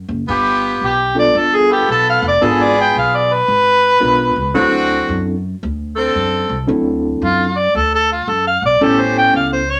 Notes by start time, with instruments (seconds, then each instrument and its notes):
0.08 upright bass F#1
0.28 upright bass G1, horn section B3 F4 G4
0.81 upright bass B1, harmonica G4
1.14 reed electric piano G3 B3 D4 F4 A4
1.19 harmonica D5
1.35 upright bass G1, harmonica A4
1.55 harmonica G#4
1.69 horn section B3 F4 A4, harmonica G4
1.88 upright bass B1, harmonica A4
2.10 harmonica F5
2.22 upright bass F1
2.28 harmonica D5
2.41 upright bass G#1, reed electric piano G#3 B3 D4 F4 A#4, horn section B3 F4 G#4, harmonica A4
2.63 harmonica D5
2.81 harmonica G5
2.95 upright bass B1, harmonica F5
3.16 harmonica D5
3.33 harmonica B4
3.48 upright bass G#1
4.00 upright bass B1, reed electric piano G#3 B3 D4 F4 A#4
4.36 upright bass C#2
4.54 upright bass D2, reed electric piano F#3 C4 D4 E4 A4, horn section C4 D4 F#4
5.09 upright bass F#2
5.63 upright bass D2
5.96 horn section C4 D4 A4
6.15 upright bass F#2
6.49 upright bass C2
6.67 upright bass D2, reed electric piano F#3 C4 D4 E4 A4
7.22 upright bass F#2, harmonica F4
7.58 harmonica D5
7.75 upright bass D2, harmonica A4
7.95 harmonica A4
8.12 harmonica F4
8.27 upright bass F#2, harmonica A4
8.47 harmonica F5
8.62 upright bass B1, harmonica D5
8.81 upright bass A1, reed electric piano G3 B3 C#4 E4 A4, horn section A3 C#4 G4, harmonica A4
9.00 harmonica C5
9.18 harmonica G5
9.34 upright bass C#2, harmonica F5
9.53 harmonica C5
9.70 harmonica C#5